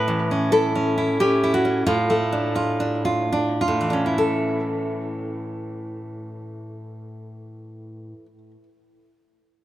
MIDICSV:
0, 0, Header, 1, 2, 480
1, 0, Start_track
1, 0, Key_signature, 3, "major"
1, 0, Tempo, 675676
1, 1316, Time_signature, 3, 2, 24, 8
1, 1809, Tempo, 774194
1, 2289, Tempo, 873362
1, 2769, Tempo, 836820
1, 5895, End_track
2, 0, Start_track
2, 0, Title_t, "Nylon-string guitar"
2, 0, Program_c, 0, 24
2, 0, Note_on_c, 0, 45, 42
2, 0, Note_on_c, 0, 71, 61
2, 55, Note_on_c, 0, 52, 33
2, 222, Note_on_c, 0, 61, 33
2, 350, Note_off_c, 0, 71, 0
2, 369, Note_on_c, 0, 69, 59
2, 373, Note_on_c, 0, 64, 37
2, 527, Note_off_c, 0, 61, 0
2, 536, Note_on_c, 0, 61, 34
2, 685, Note_off_c, 0, 64, 0
2, 693, Note_on_c, 0, 64, 35
2, 769, Note_off_c, 0, 52, 0
2, 827, Note_off_c, 0, 69, 0
2, 849, Note_off_c, 0, 61, 0
2, 854, Note_on_c, 0, 67, 61
2, 857, Note_on_c, 0, 61, 35
2, 1011, Note_off_c, 0, 64, 0
2, 1019, Note_on_c, 0, 64, 35
2, 1077, Note_off_c, 0, 67, 0
2, 1093, Note_on_c, 0, 66, 58
2, 1163, Note_off_c, 0, 61, 0
2, 1171, Note_on_c, 0, 61, 34
2, 1292, Note_off_c, 0, 45, 0
2, 1313, Note_off_c, 0, 66, 0
2, 1323, Note_off_c, 0, 61, 0
2, 1325, Note_off_c, 0, 64, 0
2, 1325, Note_on_c, 0, 45, 47
2, 1325, Note_on_c, 0, 65, 58
2, 1491, Note_on_c, 0, 57, 36
2, 1651, Note_on_c, 0, 62, 36
2, 1794, Note_off_c, 0, 65, 0
2, 1815, Note_on_c, 0, 65, 39
2, 1959, Note_off_c, 0, 62, 0
2, 1966, Note_on_c, 0, 62, 40
2, 2114, Note_off_c, 0, 65, 0
2, 2121, Note_on_c, 0, 65, 40
2, 2212, Note_off_c, 0, 57, 0
2, 2284, Note_off_c, 0, 62, 0
2, 2291, Note_on_c, 0, 62, 42
2, 2441, Note_off_c, 0, 65, 0
2, 2448, Note_on_c, 0, 65, 39
2, 2479, Note_off_c, 0, 45, 0
2, 2485, Note_on_c, 0, 45, 38
2, 2556, Note_on_c, 0, 52, 33
2, 2601, Note_off_c, 0, 62, 0
2, 2608, Note_on_c, 0, 62, 34
2, 2624, Note_on_c, 0, 61, 31
2, 2692, Note_off_c, 0, 62, 0
2, 2695, Note_on_c, 0, 64, 33
2, 2759, Note_off_c, 0, 65, 0
2, 2762, Note_on_c, 0, 69, 41
2, 5025, Note_off_c, 0, 45, 0
2, 5099, Note_off_c, 0, 52, 0
2, 5169, Note_off_c, 0, 61, 0
2, 5243, Note_off_c, 0, 64, 0
2, 5313, Note_off_c, 0, 69, 0
2, 5895, End_track
0, 0, End_of_file